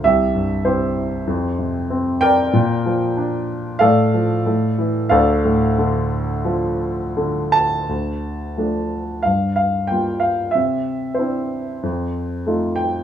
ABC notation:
X:1
M:4/4
L:1/8
Q:1/4=93
K:Dm
V:1 name="Grand piano"
[Ge]2 [EGc]4 z [Bdg]- | [Bdg]4 [Adf]4 | [Adf]6- [Adf] a- | a3 z f f g f |
e2 c4 z g |]
V:2 name="Grand piano" clef=bass
C,, G,, C,2 F,, C, C2 | B,, F, D2 A,, F, A,, E, | D,, A,, D,2 F,2 D,2 | D,,2 [F,A,D]2 G,,2 [G,B,F]2 |
C,2 [CDE]2 F,,2 [A,_EF]2 |]